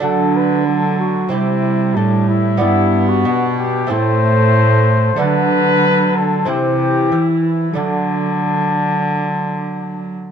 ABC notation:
X:1
M:4/4
L:1/16
Q:1/4=93
K:Dmix
V:1 name="Cornet"
A2 B2 A2 F2 E4 D2 E2 | E3 F3 G2 c8 | B6 A2 G6 E2 | D12- D2 z2 |]
V:2 name="Lute"
[A,DF]8 [CEG]8 | [G,B,D]8 [A,CE]8 | [A,D]8 [CE]8 | [A,D]16 |]
V:3 name="Lute" clef=bass
D,8 C,4 A,,4 | G,,4 B,,4 A,,8 | D,8 C,4 E,4 | D,12- D,2 z2 |]
V:4 name="Viola" clef=bass
F,4 F,4 G,8 | B,8 A,8 | F,8 E,8 | F,12- F,2 z2 |]
V:5 name="Cello" clef=bass
D,8 C,4 A,,4 | G,,4 B,,4 A,,8 | D,8 C,4 E,4 | D,12- D,2 z2 |]